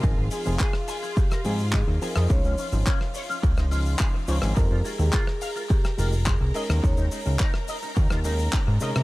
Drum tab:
HH |--o---o---o---o-|--o---o---o---o-|--o---o---o---o-|--o---o---o---o-|
SH |x-xxx-xxxxxxx-xx|xxxxx-xxxxxxx-xx|x-xxx-xxxxxxx-xx|xxxxx-xxxxxxx-xx|
CP |----x-------x---|----x-------x---|----x-------x---|----x-------x---|
SD |-----r---r-----r|-----r---r-----r|-----r---r-----r|-----r---r-----r|
BD |o---o---o---o---|o---o---o---o---|o---o---o---o---|o---o---o---o---|